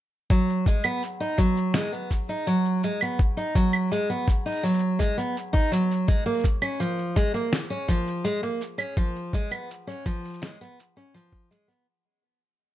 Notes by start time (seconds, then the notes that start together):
0.30 F#3, kick, shaker
0.49 shaker
0.66 G#3, kick, shaker
0.84 B3, claves, shaker
1.03 shaker
1.20 D#4, shaker
1.38 F#3, kick, shaker
1.57 shaker
1.74 G#3, snare, shaker
1.92 B3, shaker
2.11 kick, shaker
2.29 D#4, shaker
2.47 F#3, shaker
2.65 shaker
2.83 G#3, shaker
3.01 B3, claves, shaker
3.19 kick, shaker
3.37 D#4, shaker
3.55 F#3, kick, shaker
3.73 claves, shaker
3.92 G#3, shaker
4.10 B3, shaker
4.28 kick, shaker
4.46 D#4, shaker
4.52 shaker
4.56 shaker
4.60 F#3, shaker
4.65 shaker
4.69 shaker
4.74 shaker
4.79 shaker
4.99 G#3, kick, shaker
5.18 B3, shaker
5.37 shaker
5.53 D#4, kick, shaker
5.72 F#3, shaker
5.91 shaker
6.08 G#3, kick, shaker
6.26 A#3, shaker
6.30 shaker
6.34 shaker
6.37 shaker
6.39 shaker
6.42 kick, shaker
6.45 shaker
6.62 C#4, claves
6.80 F3, shaker
6.99 shaker
7.16 G#3, kick, shaker
7.34 A#3, shaker
7.53 snare, shaker
7.70 C#4, shaker
7.88 F3, kick, shaker
8.07 shaker
8.24 G#3, shaker
8.43 A#3, shaker
8.61 shaker
8.78 C#4, claves, shaker
8.97 F3, kick, shaker
9.16 shaker
9.33 G#3, kick, shaker
9.51 B3, claves, shaker
9.71 shaker
9.87 C#4, shaker
10.06 F3, kick, shaker
10.25 shaker
10.29 shaker
10.34 shaker
10.39 G#3, shaker
10.43 snare, shaker
10.61 B3, shaker
10.80 shaker
10.97 C#4, shaker
11.14 F3, shaker
11.33 kick, shaker
11.51 G#3, shaker
11.68 B3, shaker